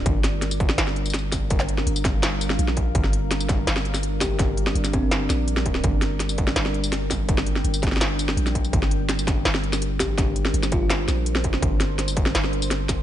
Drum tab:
HH |x---x---x---x---x---x---x---x---|x---x---x---x---x---x---x---x---|x---x---x---x---x---x---x---x---|x---x---x---x---x---x---x---x---|
TB |----------x-----------xxxx--x---|----------x---------x-----------|----------x-----------x-----x---|----------x---------x-----------|
SD |----o---o-----o-o-o-----o---o---|--o---o-----o---o-----o---o-----|--o-----o---o---o-o---o-----o---|o-----o---o-----o---o-----o---o-|
BD |o-----------o---------------o---|o-----------o---------------o---|o-----------o---------------o---|o-----------o---------------o---|

HH |x---x---x---x---x---x---x---x---|x---x---x---x---x---x---x---x---|x---x---x---x-------x---x---x---|x---x---x---x---x---x---x---x---|
TB |----------x-----------x-----x---|----------x---------x-----x---x-|----------x-----------x-----x---|----------x---------x-----------|
SD |----o---o-----o-o-o-----o---o---|--o---o-----ooooo-----o---o-----|--o-----o---o---o-o---o-----o---|o-----o---o-----o---o-----o---o-|
BD |o-----------o---------------o---|o-----------o---------------o---|o-----------o---------------o---|o-----------o---------------o---|

HH |x---x---x---x---x---x---x---x---|
TB |----------x-----------x-----x---|
SD |----o---o-----o-o-o-----o---o---|
BD |o-----------o---------------o---|